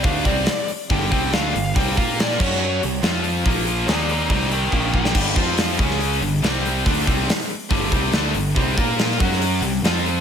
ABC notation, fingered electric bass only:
X:1
M:4/4
L:1/8
Q:1/4=141
K:C
V:1 name="Fingered electric bass" clef=bass
D,, C,, z2 G,,, C,, D,, G,,, | C,, _B,,2 ^F,,2 C,, =F,,2 | _B,,,2 _E,,2 C,,2 B,,,2 | G,,, F,,2 ^C,,2 G,,, =C,,2 |
D,, C,, z2 G,,, C,, D,, G,,, | C,, _B,,2 ^F,,2 C,, =F,,2 |]